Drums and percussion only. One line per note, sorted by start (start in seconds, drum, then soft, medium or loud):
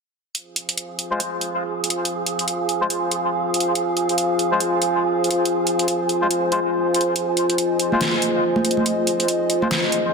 0.35 closed hi-hat medium
0.56 closed hi-hat soft
0.69 closed hi-hat soft
0.78 closed hi-hat medium
0.99 closed hi-hat medium
1.20 closed hi-hat medium
1.41 closed hi-hat medium
1.84 closed hi-hat soft
1.90 closed hi-hat medium
2.05 closed hi-hat medium
2.26 closed hi-hat medium
2.39 closed hi-hat soft
2.48 closed hi-hat medium
2.69 closed hi-hat medium
2.90 closed hi-hat medium
3.11 closed hi-hat medium
3.54 closed hi-hat soft
3.60 closed hi-hat medium
3.75 closed hi-hat medium
3.97 closed hi-hat soft
4.09 closed hi-hat soft
4.18 closed hi-hat medium
4.39 closed hi-hat soft
4.60 closed hi-hat medium
4.82 closed hi-hat soft
5.24 closed hi-hat soft
5.31 closed hi-hat medium
5.45 closed hi-hat medium
5.67 closed hi-hat soft
5.79 closed hi-hat soft
5.88 closed hi-hat medium
6.09 closed hi-hat soft
6.31 closed hi-hat medium
6.52 closed hi-hat soft
6.94 closed hi-hat soft
7.01 closed hi-hat medium
7.16 closed hi-hat medium
7.37 closed hi-hat soft
7.50 closed hi-hat soft
7.58 closed hi-hat medium
7.80 closed hi-hat soft
7.92 high conga medium
8.01 snare loud
8.01 closed hi-hat medium
8.22 closed hi-hat soft
8.56 high conga medium
8.65 closed hi-hat soft
8.71 closed hi-hat medium
8.77 high conga medium
8.86 closed hi-hat medium
9.07 closed hi-hat soft
9.20 closed hi-hat soft
9.28 closed hi-hat medium
9.50 closed hi-hat medium
9.62 high conga medium
9.71 snare loud
9.71 closed hi-hat medium
9.92 closed hi-hat soft